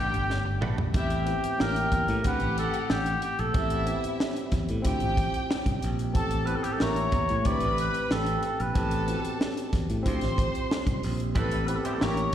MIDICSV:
0, 0, Header, 1, 10, 480
1, 0, Start_track
1, 0, Tempo, 650759
1, 696, Time_signature, 4, 2, 24, 8
1, 9109, End_track
2, 0, Start_track
2, 0, Title_t, "Vibraphone"
2, 0, Program_c, 0, 11
2, 933, Note_on_c, 0, 76, 68
2, 1385, Note_off_c, 0, 76, 0
2, 1654, Note_on_c, 0, 78, 62
2, 2826, Note_off_c, 0, 78, 0
2, 4058, Note_on_c, 0, 79, 53
2, 4748, Note_off_c, 0, 79, 0
2, 5014, Note_on_c, 0, 76, 82
2, 5706, Note_off_c, 0, 76, 0
2, 5978, Note_on_c, 0, 79, 75
2, 6668, Note_off_c, 0, 79, 0
2, 9109, End_track
3, 0, Start_track
3, 0, Title_t, "Violin section"
3, 0, Program_c, 1, 48
3, 0, Note_on_c, 1, 67, 91
3, 0, Note_on_c, 1, 79, 107
3, 441, Note_off_c, 1, 67, 0
3, 441, Note_off_c, 1, 79, 0
3, 696, Note_on_c, 1, 76, 104
3, 697, Note_on_c, 1, 64, 89
3, 931, Note_off_c, 1, 76, 0
3, 932, Note_off_c, 1, 64, 0
3, 1179, Note_on_c, 1, 67, 89
3, 1180, Note_on_c, 1, 79, 101
3, 1413, Note_off_c, 1, 67, 0
3, 1413, Note_off_c, 1, 79, 0
3, 1653, Note_on_c, 1, 78, 110
3, 1654, Note_on_c, 1, 67, 105
3, 2360, Note_off_c, 1, 78, 0
3, 2361, Note_off_c, 1, 67, 0
3, 2611, Note_on_c, 1, 76, 115
3, 2612, Note_on_c, 1, 64, 97
3, 3319, Note_off_c, 1, 76, 0
3, 3320, Note_off_c, 1, 64, 0
3, 3575, Note_on_c, 1, 67, 94
3, 3575, Note_on_c, 1, 79, 123
3, 4281, Note_off_c, 1, 67, 0
3, 4282, Note_off_c, 1, 79, 0
3, 4536, Note_on_c, 1, 69, 95
3, 4536, Note_on_c, 1, 81, 106
3, 4771, Note_off_c, 1, 69, 0
3, 4771, Note_off_c, 1, 81, 0
3, 5013, Note_on_c, 1, 70, 96
3, 5013, Note_on_c, 1, 82, 110
3, 5250, Note_off_c, 1, 70, 0
3, 5250, Note_off_c, 1, 82, 0
3, 5493, Note_on_c, 1, 83, 117
3, 5494, Note_on_c, 1, 71, 106
3, 6201, Note_off_c, 1, 71, 0
3, 6201, Note_off_c, 1, 83, 0
3, 6450, Note_on_c, 1, 81, 106
3, 6451, Note_on_c, 1, 69, 100
3, 7160, Note_off_c, 1, 69, 0
3, 7160, Note_off_c, 1, 81, 0
3, 7416, Note_on_c, 1, 72, 108
3, 7416, Note_on_c, 1, 84, 107
3, 8122, Note_off_c, 1, 84, 0
3, 8123, Note_off_c, 1, 72, 0
3, 8379, Note_on_c, 1, 83, 99
3, 8382, Note_on_c, 1, 71, 88
3, 8614, Note_off_c, 1, 83, 0
3, 8615, Note_off_c, 1, 71, 0
3, 8859, Note_on_c, 1, 70, 92
3, 8859, Note_on_c, 1, 82, 95
3, 9094, Note_off_c, 1, 70, 0
3, 9094, Note_off_c, 1, 82, 0
3, 9109, End_track
4, 0, Start_track
4, 0, Title_t, "Cor anglais"
4, 0, Program_c, 2, 69
4, 0, Note_on_c, 2, 67, 95
4, 465, Note_off_c, 2, 67, 0
4, 707, Note_on_c, 2, 67, 93
4, 1187, Note_on_c, 2, 70, 99
4, 1198, Note_off_c, 2, 67, 0
4, 1613, Note_off_c, 2, 70, 0
4, 1613, Note_on_c, 2, 70, 83
4, 1668, Note_on_c, 2, 71, 124
4, 1679, Note_off_c, 2, 70, 0
4, 1902, Note_off_c, 2, 71, 0
4, 1906, Note_on_c, 2, 69, 95
4, 2141, Note_on_c, 2, 67, 83
4, 2152, Note_off_c, 2, 69, 0
4, 2379, Note_off_c, 2, 67, 0
4, 2384, Note_on_c, 2, 67, 88
4, 2502, Note_on_c, 2, 69, 84
4, 2513, Note_off_c, 2, 67, 0
4, 2979, Note_off_c, 2, 69, 0
4, 4550, Note_on_c, 2, 69, 92
4, 4764, Note_on_c, 2, 71, 84
4, 4775, Note_off_c, 2, 69, 0
4, 4833, Note_on_c, 2, 69, 79
4, 4844, Note_off_c, 2, 71, 0
4, 4893, Note_on_c, 2, 67, 76
4, 4904, Note_off_c, 2, 69, 0
4, 4957, Note_on_c, 2, 69, 75
4, 4969, Note_off_c, 2, 67, 0
4, 5028, Note_on_c, 2, 73, 109
4, 5040, Note_off_c, 2, 69, 0
4, 5505, Note_on_c, 2, 74, 127
4, 5516, Note_off_c, 2, 73, 0
4, 5741, Note_off_c, 2, 74, 0
4, 5752, Note_on_c, 2, 71, 103
4, 5988, Note_on_c, 2, 69, 98
4, 5999, Note_off_c, 2, 71, 0
4, 6223, Note_off_c, 2, 69, 0
4, 6231, Note_on_c, 2, 69, 85
4, 6348, Note_on_c, 2, 71, 86
4, 6359, Note_off_c, 2, 69, 0
4, 6823, Note_off_c, 2, 71, 0
4, 8394, Note_on_c, 2, 69, 97
4, 8606, Note_on_c, 2, 71, 75
4, 8617, Note_off_c, 2, 69, 0
4, 8667, Note_on_c, 2, 69, 73
4, 8678, Note_off_c, 2, 71, 0
4, 8736, Note_on_c, 2, 67, 73
4, 8747, Note_off_c, 2, 69, 0
4, 8802, Note_on_c, 2, 69, 64
4, 8813, Note_off_c, 2, 67, 0
4, 8877, Note_on_c, 2, 73, 104
4, 8888, Note_off_c, 2, 69, 0
4, 9109, Note_off_c, 2, 73, 0
4, 9109, End_track
5, 0, Start_track
5, 0, Title_t, "Clean electric guitar"
5, 0, Program_c, 3, 27
5, 0, Note_on_c, 3, 57, 50
5, 0, Note_on_c, 3, 62, 53
5, 0, Note_on_c, 3, 66, 59
5, 0, Note_on_c, 3, 71, 57
5, 84, Note_off_c, 3, 57, 0
5, 84, Note_off_c, 3, 71, 0
5, 85, Note_off_c, 3, 62, 0
5, 86, Note_off_c, 3, 66, 0
5, 452, Note_on_c, 3, 57, 79
5, 454, Note_on_c, 3, 62, 80
5, 456, Note_on_c, 3, 66, 85
5, 459, Note_on_c, 3, 71, 85
5, 563, Note_off_c, 3, 71, 0
5, 567, Note_off_c, 3, 66, 0
5, 569, Note_off_c, 3, 62, 0
5, 593, Note_off_c, 3, 57, 0
5, 8373, Note_on_c, 3, 55, 82
5, 8375, Note_on_c, 3, 60, 84
5, 8376, Note_on_c, 3, 64, 91
5, 8380, Note_on_c, 3, 71, 92
5, 8514, Note_off_c, 3, 55, 0
5, 8515, Note_off_c, 3, 60, 0
5, 8516, Note_off_c, 3, 64, 0
5, 8518, Note_off_c, 3, 71, 0
5, 8739, Note_on_c, 3, 72, 52
5, 8742, Note_on_c, 3, 64, 52
5, 8744, Note_on_c, 3, 60, 50
5, 8746, Note_on_c, 3, 55, 44
5, 8847, Note_off_c, 3, 72, 0
5, 8848, Note_off_c, 3, 64, 0
5, 8849, Note_off_c, 3, 60, 0
5, 8851, Note_off_c, 3, 55, 0
5, 8858, Note_on_c, 3, 58, 78
5, 8861, Note_on_c, 3, 64, 88
5, 8862, Note_on_c, 3, 67, 90
5, 8864, Note_on_c, 3, 73, 88
5, 8970, Note_off_c, 3, 73, 0
5, 8972, Note_off_c, 3, 67, 0
5, 8976, Note_off_c, 3, 64, 0
5, 8997, Note_off_c, 3, 58, 0
5, 9109, End_track
6, 0, Start_track
6, 0, Title_t, "Tine electric piano"
6, 0, Program_c, 4, 4
6, 0, Control_c, 4, 64, 127
6, 0, Note_on_c, 4, 57, 82
6, 0, Note_on_c, 4, 59, 71
6, 0, Note_on_c, 4, 62, 66
6, 0, Note_on_c, 4, 67, 80
6, 580, Note_off_c, 4, 57, 0
6, 585, Note_off_c, 4, 59, 0
6, 589, Note_off_c, 4, 62, 0
6, 594, Note_off_c, 4, 67, 0
6, 683, Note_on_c, 4, 59, 66
6, 694, Note_on_c, 4, 60, 64
6, 702, Note_on_c, 4, 64, 66
6, 707, Control_c, 4, 64, 0
6, 711, Note_on_c, 4, 67, 71
6, 858, Control_c, 4, 64, 127
6, 903, Note_off_c, 4, 59, 0
6, 908, Note_off_c, 4, 60, 0
6, 912, Note_off_c, 4, 64, 0
6, 917, Note_off_c, 4, 67, 0
6, 921, Note_on_c, 4, 59, 69
6, 931, Note_on_c, 4, 60, 67
6, 940, Note_on_c, 4, 64, 67
6, 949, Note_on_c, 4, 67, 74
6, 1163, Note_on_c, 4, 58, 79
6, 1169, Note_off_c, 4, 59, 0
6, 1171, Note_on_c, 4, 61, 73
6, 1172, Note_off_c, 4, 64, 0
6, 1173, Note_off_c, 4, 60, 0
6, 1181, Note_on_c, 4, 64, 73
6, 1183, Note_off_c, 4, 67, 0
6, 1185, Control_c, 4, 64, 0
6, 1192, Note_on_c, 4, 67, 89
6, 1322, Control_c, 4, 64, 127
6, 1596, Note_off_c, 4, 58, 0
6, 1600, Note_off_c, 4, 61, 0
6, 1605, Note_off_c, 4, 64, 0
6, 1611, Note_off_c, 4, 67, 0
6, 1639, Note_on_c, 4, 57, 79
6, 1649, Note_on_c, 4, 60, 71
6, 1658, Note_on_c, 4, 64, 77
6, 1665, Note_on_c, 4, 67, 91
6, 1667, Control_c, 4, 64, 0
6, 1775, Control_c, 4, 64, 127
6, 2500, Note_off_c, 4, 57, 0
6, 2505, Note_off_c, 4, 60, 0
6, 2510, Note_off_c, 4, 64, 0
6, 2514, Note_off_c, 4, 67, 0
6, 2598, Note_on_c, 4, 59, 78
6, 2607, Note_on_c, 4, 60, 66
6, 2616, Note_on_c, 4, 64, 69
6, 2625, Control_c, 4, 64, 0
6, 2626, Note_on_c, 4, 67, 83
6, 2747, Control_c, 4, 64, 127
6, 2821, Note_off_c, 4, 59, 0
6, 2825, Note_off_c, 4, 60, 0
6, 2829, Note_off_c, 4, 64, 0
6, 2834, Note_off_c, 4, 67, 0
6, 2836, Note_on_c, 4, 59, 72
6, 2845, Note_on_c, 4, 60, 66
6, 2855, Note_on_c, 4, 64, 70
6, 2866, Note_on_c, 4, 67, 77
6, 3547, Note_off_c, 4, 60, 0
6, 3556, Note_on_c, 4, 60, 98
6, 3557, Note_off_c, 4, 64, 0
6, 3566, Note_off_c, 4, 59, 0
6, 3566, Note_on_c, 4, 64, 92
6, 3575, Note_on_c, 4, 65, 87
6, 3577, Note_off_c, 4, 67, 0
6, 3586, Note_on_c, 4, 67, 104
6, 3587, Control_c, 4, 64, 0
6, 3702, Control_c, 4, 64, 127
6, 4419, Note_off_c, 4, 60, 0
6, 4424, Note_off_c, 4, 64, 0
6, 4428, Note_off_c, 4, 65, 0
6, 4434, Note_off_c, 4, 67, 0
6, 4520, Note_on_c, 4, 59, 73
6, 4529, Note_on_c, 4, 60, 67
6, 4537, Note_on_c, 4, 64, 66
6, 4546, Control_c, 4, 64, 0
6, 4547, Note_on_c, 4, 67, 79
6, 4689, Control_c, 4, 64, 127
6, 4742, Note_off_c, 4, 59, 0
6, 4746, Note_off_c, 4, 60, 0
6, 4750, Note_off_c, 4, 64, 0
6, 4755, Note_off_c, 4, 67, 0
6, 4759, Note_on_c, 4, 59, 70
6, 4771, Note_on_c, 4, 60, 73
6, 4779, Note_on_c, 4, 64, 64
6, 4789, Note_on_c, 4, 67, 78
6, 4997, Note_on_c, 4, 58, 82
6, 5008, Note_off_c, 4, 59, 0
6, 5008, Note_off_c, 4, 64, 0
6, 5008, Note_on_c, 4, 61, 73
6, 5014, Note_off_c, 4, 60, 0
6, 5017, Note_on_c, 4, 64, 70
6, 5018, Note_off_c, 4, 67, 0
6, 5027, Control_c, 4, 64, 0
6, 5027, Note_on_c, 4, 67, 90
6, 5141, Control_c, 4, 64, 127
6, 5433, Note_off_c, 4, 58, 0
6, 5439, Note_off_c, 4, 61, 0
6, 5444, Note_off_c, 4, 64, 0
6, 5449, Note_off_c, 4, 67, 0
6, 5476, Note_on_c, 4, 57, 83
6, 5487, Note_on_c, 4, 60, 82
6, 5495, Note_on_c, 4, 64, 75
6, 5504, Note_on_c, 4, 67, 83
6, 5508, Control_c, 4, 64, 0
6, 5624, Control_c, 4, 64, 127
6, 6340, Note_off_c, 4, 57, 0
6, 6345, Note_off_c, 4, 60, 0
6, 6349, Note_off_c, 4, 64, 0
6, 6353, Note_off_c, 4, 67, 0
6, 6443, Note_on_c, 4, 59, 72
6, 6452, Note_on_c, 4, 60, 70
6, 6458, Note_on_c, 4, 64, 65
6, 6468, Control_c, 4, 64, 0
6, 6468, Note_on_c, 4, 67, 82
6, 6599, Control_c, 4, 64, 127
6, 6663, Note_off_c, 4, 59, 0
6, 6668, Note_off_c, 4, 60, 0
6, 6671, Note_off_c, 4, 64, 0
6, 6676, Note_off_c, 4, 67, 0
6, 6684, Note_on_c, 4, 59, 74
6, 6693, Note_on_c, 4, 60, 63
6, 6702, Note_on_c, 4, 64, 66
6, 6713, Note_on_c, 4, 66, 63
6, 6753, Note_off_c, 4, 66, 0
6, 6760, Note_on_c, 4, 67, 78
6, 7389, Note_off_c, 4, 60, 0
6, 7397, Note_off_c, 4, 64, 0
6, 7397, Note_on_c, 4, 60, 99
6, 7406, Note_on_c, 4, 64, 89
6, 7411, Note_off_c, 4, 59, 0
6, 7414, Note_on_c, 4, 65, 86
6, 7416, Note_off_c, 4, 67, 0
6, 7425, Note_on_c, 4, 67, 99
6, 7428, Control_c, 4, 64, 0
6, 7545, Control_c, 4, 64, 127
6, 8260, Note_off_c, 4, 60, 0
6, 8265, Note_off_c, 4, 64, 0
6, 8269, Note_off_c, 4, 65, 0
6, 8274, Note_off_c, 4, 67, 0
6, 8364, Note_on_c, 4, 59, 67
6, 8372, Note_on_c, 4, 60, 63
6, 8380, Note_on_c, 4, 64, 64
6, 8387, Control_c, 4, 64, 0
6, 8391, Note_on_c, 4, 67, 80
6, 8497, Control_c, 4, 64, 127
6, 8584, Note_off_c, 4, 59, 0
6, 8588, Note_off_c, 4, 60, 0
6, 8592, Note_off_c, 4, 64, 0
6, 8597, Note_off_c, 4, 67, 0
6, 8604, Note_on_c, 4, 59, 76
6, 8613, Note_on_c, 4, 60, 68
6, 8621, Note_on_c, 4, 64, 64
6, 8631, Note_on_c, 4, 67, 80
6, 8838, Note_on_c, 4, 58, 80
6, 8849, Note_off_c, 4, 64, 0
6, 8849, Note_on_c, 4, 61, 71
6, 8851, Note_off_c, 4, 59, 0
6, 8856, Note_off_c, 4, 60, 0
6, 8858, Note_on_c, 4, 64, 72
6, 8859, Note_off_c, 4, 67, 0
6, 8867, Control_c, 4, 64, 0
6, 8868, Note_on_c, 4, 67, 90
6, 8991, Control_c, 4, 64, 127
6, 9109, Note_off_c, 4, 58, 0
6, 9109, Note_off_c, 4, 61, 0
6, 9109, Note_off_c, 4, 64, 0
6, 9109, Note_off_c, 4, 67, 0
6, 9109, End_track
7, 0, Start_track
7, 0, Title_t, "Fingered electric bass"
7, 0, Program_c, 5, 33
7, 104, Note_on_c, 5, 31, 90
7, 290, Note_off_c, 5, 31, 0
7, 343, Note_on_c, 5, 31, 83
7, 435, Note_off_c, 5, 31, 0
7, 466, Note_on_c, 5, 34, 88
7, 651, Note_off_c, 5, 34, 0
7, 700, Note_on_c, 5, 33, 101
7, 982, Note_off_c, 5, 33, 0
7, 1186, Note_on_c, 5, 33, 109
7, 1371, Note_off_c, 5, 33, 0
7, 1418, Note_on_c, 5, 40, 94
7, 1512, Note_off_c, 5, 40, 0
7, 1540, Note_on_c, 5, 45, 94
7, 1633, Note_off_c, 5, 45, 0
7, 1662, Note_on_c, 5, 38, 104
7, 1754, Note_off_c, 5, 38, 0
7, 1781, Note_on_c, 5, 33, 97
7, 1968, Note_off_c, 5, 33, 0
7, 2142, Note_on_c, 5, 33, 101
7, 2329, Note_off_c, 5, 33, 0
7, 2502, Note_on_c, 5, 34, 93
7, 2594, Note_off_c, 5, 34, 0
7, 2620, Note_on_c, 5, 33, 99
7, 2902, Note_off_c, 5, 33, 0
7, 3338, Note_on_c, 5, 40, 87
7, 3432, Note_off_c, 5, 40, 0
7, 3465, Note_on_c, 5, 45, 93
7, 3556, Note_off_c, 5, 45, 0
7, 3580, Note_on_c, 5, 38, 111
7, 3673, Note_off_c, 5, 38, 0
7, 3705, Note_on_c, 5, 33, 99
7, 3891, Note_off_c, 5, 33, 0
7, 4177, Note_on_c, 5, 36, 83
7, 4272, Note_off_c, 5, 36, 0
7, 4307, Note_on_c, 5, 34, 96
7, 4541, Note_off_c, 5, 34, 0
7, 4541, Note_on_c, 5, 33, 104
7, 4823, Note_off_c, 5, 33, 0
7, 5029, Note_on_c, 5, 33, 110
7, 5213, Note_off_c, 5, 33, 0
7, 5259, Note_on_c, 5, 40, 95
7, 5353, Note_off_c, 5, 40, 0
7, 5387, Note_on_c, 5, 45, 86
7, 5478, Note_off_c, 5, 45, 0
7, 5501, Note_on_c, 5, 38, 107
7, 5594, Note_off_c, 5, 38, 0
7, 5628, Note_on_c, 5, 33, 97
7, 5813, Note_off_c, 5, 33, 0
7, 5985, Note_on_c, 5, 33, 96
7, 6171, Note_off_c, 5, 33, 0
7, 6344, Note_on_c, 5, 34, 84
7, 6436, Note_off_c, 5, 34, 0
7, 6461, Note_on_c, 5, 33, 103
7, 6743, Note_off_c, 5, 33, 0
7, 7179, Note_on_c, 5, 40, 84
7, 7273, Note_off_c, 5, 40, 0
7, 7301, Note_on_c, 5, 45, 95
7, 7394, Note_off_c, 5, 45, 0
7, 7424, Note_on_c, 5, 38, 116
7, 7516, Note_off_c, 5, 38, 0
7, 7541, Note_on_c, 5, 33, 96
7, 7729, Note_off_c, 5, 33, 0
7, 8018, Note_on_c, 5, 36, 85
7, 8112, Note_off_c, 5, 36, 0
7, 8144, Note_on_c, 5, 34, 95
7, 8380, Note_off_c, 5, 34, 0
7, 8380, Note_on_c, 5, 33, 97
7, 8663, Note_off_c, 5, 33, 0
7, 8866, Note_on_c, 5, 33, 101
7, 9052, Note_off_c, 5, 33, 0
7, 9109, End_track
8, 0, Start_track
8, 0, Title_t, "Muted clean electric guitar strokes"
8, 93, Note_on_c, 9, 29, 43
8, 167, Note_off_c, 9, 29, 0
8, 331, Note_on_c, 9, 29, 43
8, 405, Note_off_c, 9, 29, 0
8, 572, Note_on_c, 9, 29, 41
8, 645, Note_off_c, 9, 29, 0
8, 8618, Note_on_c, 9, 29, 39
8, 8691, Note_off_c, 9, 29, 0
8, 8978, Note_on_c, 9, 29, 45
8, 9052, Note_off_c, 9, 29, 0
8, 9109, End_track
9, 0, Start_track
9, 0, Title_t, "Muted fingered electric bass strokes"
9, 1067, Note_on_c, 9, 29, 46
9, 1140, Note_off_c, 9, 29, 0
9, 2987, Note_on_c, 9, 29, 46
9, 3061, Note_off_c, 9, 29, 0
9, 4906, Note_on_c, 9, 29, 48
9, 4980, Note_off_c, 9, 29, 0
9, 6822, Note_on_c, 9, 29, 50
9, 6896, Note_off_c, 9, 29, 0
9, 8745, Note_on_c, 9, 29, 50
9, 8819, Note_off_c, 9, 29, 0
9, 9109, End_track
10, 0, Start_track
10, 0, Title_t, "Drums"
10, 102, Note_on_c, 9, 42, 51
10, 176, Note_off_c, 9, 42, 0
10, 221, Note_on_c, 9, 38, 55
10, 295, Note_off_c, 9, 38, 0
10, 457, Note_on_c, 9, 45, 81
10, 530, Note_off_c, 9, 45, 0
10, 577, Note_on_c, 9, 43, 88
10, 651, Note_off_c, 9, 43, 0
10, 695, Note_on_c, 9, 42, 94
10, 696, Note_on_c, 9, 36, 127
10, 768, Note_off_c, 9, 42, 0
10, 770, Note_off_c, 9, 36, 0
10, 814, Note_on_c, 9, 42, 57
10, 887, Note_off_c, 9, 42, 0
10, 934, Note_on_c, 9, 42, 72
10, 1008, Note_off_c, 9, 42, 0
10, 1060, Note_on_c, 9, 42, 63
10, 1134, Note_off_c, 9, 42, 0
10, 1181, Note_on_c, 9, 38, 105
10, 1254, Note_off_c, 9, 38, 0
10, 1299, Note_on_c, 9, 42, 58
10, 1373, Note_off_c, 9, 42, 0
10, 1414, Note_on_c, 9, 42, 78
10, 1415, Note_on_c, 9, 36, 89
10, 1488, Note_off_c, 9, 42, 0
10, 1489, Note_off_c, 9, 36, 0
10, 1536, Note_on_c, 9, 42, 51
10, 1610, Note_off_c, 9, 42, 0
10, 1655, Note_on_c, 9, 42, 90
10, 1658, Note_on_c, 9, 36, 87
10, 1728, Note_off_c, 9, 42, 0
10, 1731, Note_off_c, 9, 36, 0
10, 1769, Note_on_c, 9, 42, 50
10, 1842, Note_off_c, 9, 42, 0
10, 1900, Note_on_c, 9, 42, 81
10, 1974, Note_off_c, 9, 42, 0
10, 2019, Note_on_c, 9, 42, 49
10, 2092, Note_off_c, 9, 42, 0
10, 2138, Note_on_c, 9, 38, 110
10, 2212, Note_off_c, 9, 38, 0
10, 2256, Note_on_c, 9, 42, 59
10, 2330, Note_off_c, 9, 42, 0
10, 2375, Note_on_c, 9, 42, 76
10, 2449, Note_off_c, 9, 42, 0
10, 2499, Note_on_c, 9, 42, 43
10, 2573, Note_off_c, 9, 42, 0
10, 2614, Note_on_c, 9, 42, 88
10, 2616, Note_on_c, 9, 36, 126
10, 2687, Note_off_c, 9, 42, 0
10, 2689, Note_off_c, 9, 36, 0
10, 2731, Note_on_c, 9, 42, 62
10, 2805, Note_off_c, 9, 42, 0
10, 2853, Note_on_c, 9, 42, 69
10, 2926, Note_off_c, 9, 42, 0
10, 2979, Note_on_c, 9, 42, 58
10, 3053, Note_off_c, 9, 42, 0
10, 3100, Note_on_c, 9, 38, 113
10, 3174, Note_off_c, 9, 38, 0
10, 3219, Note_on_c, 9, 42, 53
10, 3293, Note_off_c, 9, 42, 0
10, 3332, Note_on_c, 9, 42, 73
10, 3335, Note_on_c, 9, 36, 94
10, 3337, Note_on_c, 9, 38, 37
10, 3405, Note_off_c, 9, 42, 0
10, 3408, Note_off_c, 9, 36, 0
10, 3411, Note_off_c, 9, 38, 0
10, 3456, Note_on_c, 9, 42, 51
10, 3530, Note_off_c, 9, 42, 0
10, 3574, Note_on_c, 9, 42, 101
10, 3578, Note_on_c, 9, 36, 89
10, 3648, Note_off_c, 9, 42, 0
10, 3652, Note_off_c, 9, 36, 0
10, 3690, Note_on_c, 9, 42, 51
10, 3764, Note_off_c, 9, 42, 0
10, 3816, Note_on_c, 9, 36, 101
10, 3819, Note_on_c, 9, 42, 76
10, 3890, Note_off_c, 9, 36, 0
10, 3893, Note_off_c, 9, 42, 0
10, 3939, Note_on_c, 9, 42, 46
10, 4013, Note_off_c, 9, 42, 0
10, 4061, Note_on_c, 9, 38, 108
10, 4135, Note_off_c, 9, 38, 0
10, 4175, Note_on_c, 9, 36, 100
10, 4176, Note_on_c, 9, 42, 60
10, 4249, Note_off_c, 9, 36, 0
10, 4250, Note_off_c, 9, 42, 0
10, 4296, Note_on_c, 9, 42, 69
10, 4370, Note_off_c, 9, 42, 0
10, 4419, Note_on_c, 9, 42, 48
10, 4493, Note_off_c, 9, 42, 0
10, 4535, Note_on_c, 9, 42, 92
10, 4537, Note_on_c, 9, 36, 125
10, 4609, Note_off_c, 9, 42, 0
10, 4611, Note_off_c, 9, 36, 0
10, 4652, Note_on_c, 9, 42, 62
10, 4726, Note_off_c, 9, 42, 0
10, 4773, Note_on_c, 9, 42, 71
10, 4847, Note_off_c, 9, 42, 0
10, 4897, Note_on_c, 9, 42, 64
10, 4971, Note_off_c, 9, 42, 0
10, 5017, Note_on_c, 9, 38, 109
10, 5090, Note_off_c, 9, 38, 0
10, 5135, Note_on_c, 9, 42, 56
10, 5209, Note_off_c, 9, 42, 0
10, 5252, Note_on_c, 9, 42, 72
10, 5255, Note_on_c, 9, 36, 99
10, 5325, Note_off_c, 9, 42, 0
10, 5329, Note_off_c, 9, 36, 0
10, 5377, Note_on_c, 9, 42, 48
10, 5450, Note_off_c, 9, 42, 0
10, 5495, Note_on_c, 9, 42, 94
10, 5499, Note_on_c, 9, 36, 94
10, 5569, Note_off_c, 9, 42, 0
10, 5573, Note_off_c, 9, 36, 0
10, 5609, Note_on_c, 9, 42, 49
10, 5683, Note_off_c, 9, 42, 0
10, 5740, Note_on_c, 9, 42, 81
10, 5814, Note_off_c, 9, 42, 0
10, 5859, Note_on_c, 9, 42, 49
10, 5933, Note_off_c, 9, 42, 0
10, 5980, Note_on_c, 9, 38, 104
10, 6054, Note_off_c, 9, 38, 0
10, 6096, Note_on_c, 9, 42, 56
10, 6169, Note_off_c, 9, 42, 0
10, 6216, Note_on_c, 9, 42, 70
10, 6289, Note_off_c, 9, 42, 0
10, 6342, Note_on_c, 9, 42, 44
10, 6415, Note_off_c, 9, 42, 0
10, 6456, Note_on_c, 9, 42, 84
10, 6457, Note_on_c, 9, 36, 110
10, 6530, Note_off_c, 9, 42, 0
10, 6531, Note_off_c, 9, 36, 0
10, 6574, Note_on_c, 9, 42, 59
10, 6647, Note_off_c, 9, 42, 0
10, 6696, Note_on_c, 9, 42, 68
10, 6770, Note_off_c, 9, 42, 0
10, 6820, Note_on_c, 9, 42, 66
10, 6894, Note_off_c, 9, 42, 0
10, 6940, Note_on_c, 9, 38, 112
10, 7014, Note_off_c, 9, 38, 0
10, 7061, Note_on_c, 9, 42, 58
10, 7135, Note_off_c, 9, 42, 0
10, 7175, Note_on_c, 9, 42, 75
10, 7176, Note_on_c, 9, 36, 89
10, 7181, Note_on_c, 9, 38, 33
10, 7249, Note_off_c, 9, 42, 0
10, 7250, Note_off_c, 9, 36, 0
10, 7254, Note_off_c, 9, 38, 0
10, 7299, Note_on_c, 9, 42, 46
10, 7373, Note_off_c, 9, 42, 0
10, 7418, Note_on_c, 9, 42, 95
10, 7419, Note_on_c, 9, 36, 84
10, 7492, Note_off_c, 9, 42, 0
10, 7493, Note_off_c, 9, 36, 0
10, 7533, Note_on_c, 9, 42, 50
10, 7544, Note_on_c, 9, 38, 35
10, 7606, Note_off_c, 9, 42, 0
10, 7618, Note_off_c, 9, 38, 0
10, 7657, Note_on_c, 9, 36, 95
10, 7663, Note_on_c, 9, 42, 83
10, 7730, Note_off_c, 9, 36, 0
10, 7736, Note_off_c, 9, 42, 0
10, 7782, Note_on_c, 9, 42, 51
10, 7855, Note_off_c, 9, 42, 0
10, 7903, Note_on_c, 9, 38, 113
10, 7977, Note_off_c, 9, 38, 0
10, 8015, Note_on_c, 9, 36, 105
10, 8018, Note_on_c, 9, 42, 55
10, 8089, Note_off_c, 9, 36, 0
10, 8092, Note_off_c, 9, 42, 0
10, 8139, Note_on_c, 9, 46, 67
10, 8213, Note_off_c, 9, 46, 0
10, 8260, Note_on_c, 9, 42, 45
10, 8334, Note_off_c, 9, 42, 0
10, 8375, Note_on_c, 9, 42, 87
10, 8377, Note_on_c, 9, 36, 121
10, 8449, Note_off_c, 9, 42, 0
10, 8451, Note_off_c, 9, 36, 0
10, 8494, Note_on_c, 9, 42, 59
10, 8567, Note_off_c, 9, 42, 0
10, 8616, Note_on_c, 9, 42, 69
10, 8690, Note_off_c, 9, 42, 0
10, 8741, Note_on_c, 9, 42, 66
10, 8814, Note_off_c, 9, 42, 0
10, 8861, Note_on_c, 9, 38, 118
10, 8935, Note_off_c, 9, 38, 0
10, 8978, Note_on_c, 9, 42, 59
10, 9052, Note_off_c, 9, 42, 0
10, 9109, End_track
0, 0, End_of_file